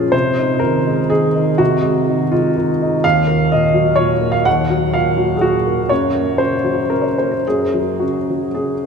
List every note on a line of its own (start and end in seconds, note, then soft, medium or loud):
0.00 0.15 A#2 medium
0.00 0.15 F3 soft
0.00 0.16 G#3 soft
0.00 0.12 C#4 soft
0.00 0.12 F4 medium
0.00 0.15 G#4 medium
0.00 0.16 A#4 medium
0.12 1.55 C3 soft
0.12 0.61 C5 medium
0.38 0.77 D#4 soft
0.59 1.00 D#3 soft
0.59 1.09 A#4 medium
0.87 1.26 G#3 soft
1.10 1.49 D#3 soft
1.10 1.59 G#4 medium
1.35 1.74 D#4 soft
1.58 3.00 C3 medium
1.58 2.32 F#4 medium
1.82 2.22 G#3 soft
2.09 2.47 D#3 soft
2.32 2.71 G#3 soft
2.32 2.56 F4 medium
2.57 2.95 D#3 soft
2.82 3.05 D#4 soft
3.04 4.42 D#2 medium
3.04 3.51 F5 loud
3.27 3.65 A#3 soft
3.52 3.90 A#2 soft
3.52 3.99 D#5 medium
3.74 4.12 F#3 soft
3.96 4.36 A#2 soft
3.96 4.33 C#5 medium
4.21 4.60 A#3 soft
4.32 4.45 F5 medium
4.45 5.87 D#2 medium
4.45 4.94 F#5 medium
4.70 5.09 F#3 soft
4.94 5.33 A#2 soft
4.94 5.35 F5 medium
5.17 5.56 F#3 soft
5.37 5.43 G#4 medium
5.41 5.81 A#2 soft
5.41 5.90 F#4 medium
5.67 5.91 A#3 soft
5.89 7.41 F#2 soft
5.89 6.39 C#5 medium
6.14 6.54 A#3 soft
6.38 6.80 C#3 soft
6.38 6.90 C5 medium
6.64 7.06 F#3 soft
6.90 7.34 C#3 soft
6.90 7.03 A#4 medium
7.02 7.16 C#5 soft
7.18 7.62 A#3 soft
7.18 7.31 C5 soft
7.31 7.45 A#4 soft
7.47 8.86 F#2 soft
7.47 8.02 G#4 medium
7.74 8.18 F#3 soft
8.00 8.45 C#3 soft
8.00 8.81 F#4 soft
8.30 8.72 F#3 soft
8.55 8.86 C#3 soft
8.55 8.86 G#4 medium